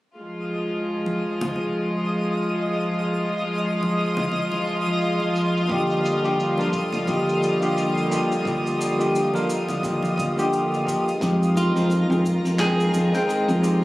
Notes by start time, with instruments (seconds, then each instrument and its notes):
0.17 string section F3 G#3 F4, synth texture D#5 D#6
1.06 high conga
1.41 low conga
1.56 low conga
1.90 cabasa
2.26 cabasa
2.60 cabasa
2.80 cabasa
2.94 cabasa
3.14 cabasa
3.29 cabasa
3.50 cabasa
3.63 cabasa
3.83 high conga, cabasa
3.97 cabasa
4.17 low conga, cabasa
4.32 low conga, cabasa
4.52 high conga, cabasa
4.67 cabasa
4.86 high conga, cabasa
5.01 cabasa
5.20 high conga, cabasa
5.36 cabasa
5.57 cabasa
5.68 tine electric piano D3 A#3 F4 G4, string section D3 G3, kick, cabasa
5.90 cabasa
6.06 cabasa
6.23 tine electric piano D3 A#3 F4 G4, cabasa
6.40 cabasa
6.57 tine electric piano A#3 D4 F4 A#4, high conga, cabasa
6.73 kick, cabasa
6.93 low conga, cabasa
7.06 tine electric piano D3 A#3 F4 G4, kick, low conga, cabasa
7.29 cabasa
7.43 cabasa
7.60 tine electric piano D3 A#3 F4 G4, cabasa
7.78 cabasa
7.97 cabasa
8.09 tine electric piano A#3 D4 F4 G4, cabasa
8.32 cabasa
8.44 tine electric piano D3 A#3 F4 G4, kick, cabasa
8.67 cabasa
8.81 cabasa
8.98 tine electric piano D3 A#3 F4 G4, cabasa
9.15 cabasa
9.33 tine electric piano A#3 D4 F4 A#4, high conga, cabasa
9.50 cabasa
9.69 low conga, cabasa
9.82 tine electric piano D3 A#3 F4 G4, kick, low conga, cabasa
10.03 high conga, cabasa
10.18 kick, cabasa
10.37 tine electric piano D3 A#3 F4 G4, high conga, cabasa
10.53 cabasa
10.72 high conga, cabasa
10.85 tine electric piano A#3 D4 F4 G4, kick, cabasa
11.08 cabasa
11.20 fingered electric bass F2, string section D#3 G#3 F4, tine electric piano G#3 C4 D#4 G4, synth texture A#4 A#5, kick, closed hi-hat, cabasa
11.43 cabasa
11.57 clean electric guitar F4, cabasa
11.75 fingered electric bass F2, tine electric piano G#3 C4 D#4 F4, closed hi-hat, cabasa
11.90 closed hi-hat, cabasa
12.09 fingered electric bass F2, tine electric piano G#3 C4 D#4 G#4, cabasa
12.25 kick, cabasa
12.45 fingered electric bass F2, closed hi-hat, cabasa
12.58 tine electric piano G#3 C4 D#4 G5, clean electric guitar G#4, kick, clap, closed hi-hat, cabasa
12.80 cabasa
12.94 fingered electric bass F2, cabasa
13.12 tine electric piano G#3 C4 D#4 G5, closed hi-hat, cabasa
13.29 closed hi-hat, cabasa
13.48 fingered electric bass F2, cabasa
13.61 tine electric piano G#3 C4 D#4 G4, cabasa